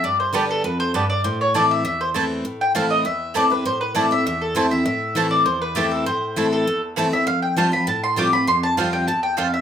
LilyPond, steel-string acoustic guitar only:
\new Staff \with { instrumentName = "Steel-string acoustic guitar" } { \time 4/4 \key a \minor \tempo 4 = 199 << { r4 <d g b g'>4 r2 | r4 <e a c' e'>4 r4 <e a c' e'>4 | r4 <e a c' e'>4 r4 <e a c' e'>8 <c' e'>8 | r4 <e a c' e'>8 <c' e'>8 r4 <e a c' e'>8 <c' e'>8 |
r4 <e a c' e'>4 r4 <e a c' e'>4 | r4 <e a c' e'>4 r4 <e a c' e'>8 <c' e'>8 | r4 <f g c' f'>8 <c' f'>8 r4 <f g c' f'>8 <c' f'>8 | r4 <f g c' f'>4 r2 | } \\ { g,2 f,4 g,4 | a,2 e,2 | a,2 e,2 | a,2 e,2 |
a,2 e,2 | a,2 e,2 | f,2 a,2 | f,2 e,4 f,4 | } >> }